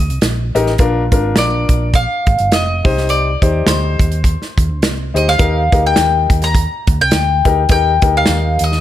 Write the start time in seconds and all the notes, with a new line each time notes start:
Already playing: D#5
0.10 C2, closed hi-hat
0.21 A#1, snare, closed hi-hat
0.55 A1 D#4 G4 A#4, closed hi-hat
0.66 snare
0.78 A#1 D4 F4 A#4, kick, closed hi-hat
1.12 G#1 D4 F4 A#4, kick, closed hi-hat
1.36 A#1 D5, snare, closed hi-hat
1.69 A#1, kick, closed hi-hat
1.94 F5, kick, closed hi-hat
2.27 G#1, kick, closed hi-hat
2.38 G1, closed hi-hat
2.52 F1 D#5, snare, closed hi-hat
2.84 C2 D#4 G4 C5, kick, open hi-hat
2.97 snare
3.09 D5, closed hi-hat
3.42 D#2 D#4 G4 C5, kick, closed hi-hat
3.66 D2 C5, snare, closed hi-hat
3.99 D#2, kick, closed hi-hat
4.12 closed hi-hat
4.24 kick, closed hi-hat
4.42 snare
4.58 D#2, kick, closed hi-hat
4.69 D2
4.82 C2, snare, closed hi-hat
5.14 D2 D#4 G4 C5 D#5, closed hi-hat
5.28 F5, snare
5.38 D#2 D#4 G4 A#4, kick, closed hi-hat
5.72 D2 D#4 G4 A#4, kick, closed hi-hat
5.86 G5
5.96 D#2, snare, closed hi-hat
6.30 D#2, kick, closed hi-hat
6.42 A#5, snare, closed hi-hat
6.55 kick, closed hi-hat
6.87 D2, kick, closed hi-hat
7.01 C2 G5
7.11 D2, snare, closed hi-hat
7.45 D2 D#4 G4 A#4, kick, closed hi-hat
7.69 D#2 D#4 G4 A#4 G5, kick, closed hi-hat
8.02 D2 D#4 G4 A#4, kick, closed hi-hat
8.17 F5
8.26 D#2, snare, closed hi-hat
8.59 D#2, closed hi-hat
8.64 D#5
8.72 snare